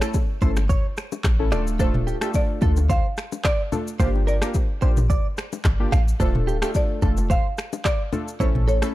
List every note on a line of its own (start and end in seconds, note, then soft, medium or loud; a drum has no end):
0.00 0.16 A3 medium
0.00 0.16 C#4 medium
0.00 0.16 E4 medium
0.00 0.09 A4 medium
0.00 0.16 A4 medium
0.00 1.48 C#5 medium
0.00 finger snap loud
0.00 cross-stick loud
0.00 shaker medium
0.14 kick loud
0.14 high bongo medium
0.14 shaker medium
0.41 0.74 G1 loud
0.41 0.58 A3 medium
0.41 0.58 C#4 medium
0.41 0.58 E4 medium
0.41 0.58 A4 medium
0.41 0.51 C5 medium
0.41 kick medium
0.41 shaker soft
0.56 finger snap medium
0.56 cross-stick medium
0.56 low bongo medium
0.56 shaker medium
0.69 0.86 C#5 medium
0.69 kick loud
0.69 low conga medium
0.69 shaker medium
0.97 finger snap medium
0.97 cross-stick medium
0.97 shaker medium
1.12 high bongo medium
1.12 low bongo medium
1.12 shaker medium
1.24 1.53 A1 medium
1.24 finger snap medium
1.24 kick medium
1.24 cross-stick loud
1.24 clap loud
1.24 high bongo medium
1.24 shaker medium
1.39 1.50 A3 medium
1.39 1.54 C#4 medium
1.39 1.54 E4 medium
1.39 1.51 A4 medium
1.52 2.14 D1 loud
1.52 1.77 A3 loud
1.52 1.77 D4 medium
1.52 1.77 F4 medium
1.52 1.78 A4 loud
1.52 1.61 D5 medium
1.52 finger snap medium
1.52 cross-stick loud
1.52 low bongo medium
1.52 low conga medium
1.52 shaker medium
1.67 shaker medium
1.79 2.18 A3 loud
1.79 2.18 D4 medium
1.79 2.19 F4 medium
1.79 1.89 A4 medium
1.79 2.19 A4 loud
1.79 2.37 C5 loud
1.79 kick loud
1.79 low conga medium
1.79 shaker medium
1.94 mid tom loud
1.94 low bongo medium
2.07 2.16 G4 medium
2.07 high bongo medium
2.07 shaker medium
2.21 2.59 A3 medium
2.21 2.59 D4 medium
2.21 2.59 F4 medium
2.21 2.30 G4 medium
2.21 2.59 A4 medium
2.21 finger snap loud
2.21 cross-stick loud
2.21 shaker medium
2.34 2.92 D5 loud
2.34 kick medium
2.34 high bongo medium
2.34 shaker medium
2.61 2.94 D2 loud
2.61 2.87 A3 medium
2.61 2.87 D4 medium
2.61 2.88 F4 medium
2.61 2.71 A4 medium
2.61 2.88 A4 medium
2.61 kick medium
2.61 shaker soft
2.76 low bongo medium
2.76 shaker medium
2.89 3.06 C5 medium
2.89 3.47 F5 loud
2.89 kick loud
2.89 low conga medium
2.89 shaker medium
3.17 finger snap medium
3.17 cross-stick medium
3.17 shaker soft
3.32 high bongo medium
3.32 low bongo medium
3.32 shaker medium
3.44 3.61 D5 medium
3.44 4.02 D5 loud
3.44 finger snap medium
3.44 kick loud
3.44 cross-stick loud
3.44 clap loud
3.44 high bongo medium
3.44 shaker medium
3.72 3.89 A3 medium
3.72 3.89 D4 medium
3.72 3.89 F4 medium
3.72 3.89 A4 medium
3.72 low bongo medium
3.72 low conga medium
3.72 shaker medium
3.88 shaker medium
3.99 4.41 G1 loud
3.99 4.39 A#3 medium
3.99 4.39 D4 medium
3.99 4.39 F4 medium
3.99 4.39 G4 loud
3.99 4.09 C5 medium
3.99 4.13 C5 medium
3.99 kick loud
3.99 low conga medium
3.99 shaker medium
4.15 low bongo medium
4.27 4.36 A#4 loud
4.27 5.89 D5 medium
4.27 high bongo medium
4.27 shaker medium
4.42 4.56 A#3 medium
4.42 4.56 D4 medium
4.42 4.57 F4 medium
4.42 4.57 G4 medium
4.42 4.50 A#4 medium
4.42 finger snap loud
4.42 cross-stick loud
4.42 shaker medium
4.54 kick loud
4.54 high bongo medium
4.54 shaker medium
4.82 5.14 A1 loud
4.82 4.99 A#3 medium
4.82 4.99 D4 medium
4.82 4.99 F4 medium
4.82 4.99 G4 medium
4.82 4.91 C5 medium
4.82 shaker soft
4.97 mid tom loud
4.97 low bongo medium
4.97 shaker medium
5.10 5.26 D5 medium
5.10 kick loud
5.10 low conga medium
5.10 shaker medium
5.37 finger snap medium
5.37 cross-stick loud
5.37 shaker medium
5.52 high bongo medium
5.52 low bongo medium
5.52 shaker medium
5.65 5.86 G1 medium
5.65 finger snap medium
5.65 kick medium
5.65 cross-stick loud
5.65 clap loud
5.65 high bongo medium
5.65 shaker medium
5.80 5.94 A#3 medium
5.80 5.94 D4 medium
5.80 5.94 F4 medium
5.80 5.94 G4 medium
5.92 6.13 A1 loud
5.92 6.01 F5 medium
5.92 finger snap medium
5.92 cross-stick loud
5.92 low bongo medium
5.92 low conga medium
5.92 shaker medium
6.08 shaker medium
6.20 6.61 D1 loud
6.20 6.59 A3 loud
6.20 6.59 D4 medium
6.20 6.59 F4 medium
6.20 6.29 A4 medium
6.20 6.59 A4 loud
6.20 6.77 C5 loud
6.20 kick loud
6.20 low conga medium
6.20 shaker medium
6.35 mid tom loud
6.35 low bongo medium
6.47 6.56 G4 medium
6.47 high bongo medium
6.47 shaker medium
6.62 6.99 A3 medium
6.62 6.99 D4 medium
6.62 7.00 F4 medium
6.62 6.70 G4 medium
6.62 7.00 A4 medium
6.62 finger snap medium
6.62 cross-stick loud
6.62 shaker medium
6.74 7.32 D5 loud
6.74 kick loud
6.74 high bongo medium
6.74 shaker medium
7.02 7.35 F1 loud
7.02 7.28 A3 medium
7.02 7.28 D4 medium
7.02 7.28 F4 medium
7.02 7.11 A4 medium
7.02 7.28 A4 medium
7.02 kick medium
7.02 shaker soft
7.17 low bongo medium
7.17 shaker medium
7.30 7.46 C5 medium
7.30 7.87 F5 loud
7.30 kick loud
7.30 low conga medium
7.30 shaker medium
7.58 finger snap medium
7.58 cross-stick medium
7.58 shaker medium
7.73 high bongo medium
7.73 low bongo medium
7.73 shaker medium
7.85 8.02 D5 medium
7.85 8.42 D5 loud
7.85 finger snap medium
7.85 kick loud
7.85 cross-stick loud
7.85 clap loud
7.85 high bongo medium
7.85 shaker medium
8.12 8.29 A3 medium
8.12 8.29 D4 medium
8.12 8.29 F4 medium
8.12 8.29 A4 medium
8.12 low bongo medium
8.12 low conga medium
8.12 shaker medium
8.28 shaker medium
8.40 8.82 A1 loud
8.40 8.79 A3 medium
8.40 8.79 C#4 medium
8.40 8.79 E4 medium
8.40 8.79 A4 loud
8.40 8.66 C5 loud
8.40 8.49 C#5 medium
8.40 kick loud
8.40 low conga medium
8.40 shaker medium
8.55 mid tom loud
8.55 low bongo medium
8.68 8.77 A4 loud
8.68 8.95 C#5 medium
8.68 high bongo medium
8.68 shaker medium
8.82 8.95 A3 medium
8.82 8.95 C#4 medium
8.82 8.95 E4 medium
8.82 8.90 A4 medium
8.82 8.95 A4 medium
8.82 finger snap loud
8.82 cross-stick loud
8.82 shaker medium